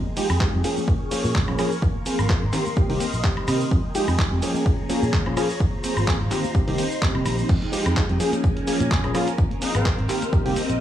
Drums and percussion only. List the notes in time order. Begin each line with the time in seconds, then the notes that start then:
0.06 high conga
0.17 open hi-hat, tambourine, cabasa
0.29 tambourine, cabasa, high woodblock
0.40 kick, clap, tambourine, high conga, cabasa
0.54 low conga
0.64 open hi-hat, tambourine, cabasa
0.77 tambourine, high conga, cabasa
0.87 kick, tambourine, cabasa
1.11 open hi-hat, tambourine, high conga, cabasa
1.24 cabasa
1.35 kick, clap, cabasa
1.48 low conga, high woodblock
1.59 open hi-hat, tambourine, high conga, cabasa, high woodblock
1.72 tambourine, cabasa
1.82 kick, cabasa
1.95 high conga
2.06 open hi-hat, tambourine, cabasa
2.19 cabasa, high woodblock
2.29 kick, clap, tambourine, high conga, cabasa
2.43 low conga
2.53 clap, open hi-hat, cabasa
2.66 tambourine, high conga, cabasa
2.77 kick, cabasa
2.90 open hi-hat
3.00 open hi-hat, tambourine, high conga, cabasa
3.13 tambourine, cabasa
3.24 kick, clap, cabasa
3.37 low conga, high woodblock
3.47 open hi-hat, tambourine, high conga, cabasa, high woodblock
3.61 tambourine, cabasa
3.71 kick, cabasa
3.84 high conga
3.95 open hi-hat, tambourine, cabasa
4.08 cabasa, high woodblock
4.18 kick, clap, tambourine, high conga, cabasa
4.31 low conga
4.42 open hi-hat, tambourine, cabasa
4.54 tambourine, high conga, cabasa
4.66 kick, cabasa
4.79 tambourine
4.90 open hi-hat, tambourine, high conga, cabasa
5.03 cabasa
5.13 kick, clap, cabasa
5.26 low conga, high woodblock
5.37 open hi-hat, tambourine, high conga, cabasa, high woodblock
5.50 tambourine, cabasa
5.60 kick, cabasa
5.73 tambourine, high conga
5.84 open hi-hat, tambourine, cabasa
5.97 tambourine, cabasa, high woodblock
6.07 kick, clap, tambourine, high conga, cabasa
6.21 tambourine, low conga
6.30 clap, open hi-hat, tambourine, cabasa
6.44 tambourine, high conga, cabasa
6.54 kick, tambourine, cabasa
6.68 open hi-hat
6.78 open hi-hat, tambourine, high conga, cabasa
6.91 tambourine, cabasa
7.02 kick, clap, cabasa
7.15 tambourine, low conga, high woodblock
7.25 open hi-hat, tambourine, high conga, cabasa, high woodblock
7.38 tambourine, cabasa
7.49 kick, crash, cabasa
7.62 closed hi-hat, high conga
7.73 open hi-hat, tambourine, cabasa
7.86 closed hi-hat, cabasa, high woodblock
7.95 kick, clap, tambourine, high conga, cabasa
8.09 closed hi-hat, low conga
8.20 open hi-hat, tambourine, cabasa
8.32 closed hi-hat, tambourine, high conga, cabasa
8.44 kick, tambourine, cabasa
8.56 closed hi-hat, tambourine
8.67 open hi-hat, tambourine, high conga, cabasa
8.80 closed hi-hat, tambourine, cabasa
8.91 kick, clap, cabasa
9.04 closed hi-hat, low conga, high woodblock
9.14 open hi-hat, tambourine, high conga, cabasa, high woodblock
9.28 closed hi-hat, tambourine, cabasa
9.38 kick, tambourine, cabasa
9.51 closed hi-hat, high conga
9.62 open hi-hat, tambourine, cabasa
9.75 closed hi-hat, tambourine, cabasa, high woodblock
9.85 kick, clap, tambourine, high conga, cabasa
9.98 closed hi-hat, low conga
10.08 clap, open hi-hat, tambourine, cabasa
10.22 closed hi-hat, tambourine, high conga, cabasa
10.33 kick, tambourine, cabasa
10.46 open hi-hat, tambourine
10.56 open hi-hat, tambourine, high conga, cabasa
10.70 closed hi-hat, tambourine, cabasa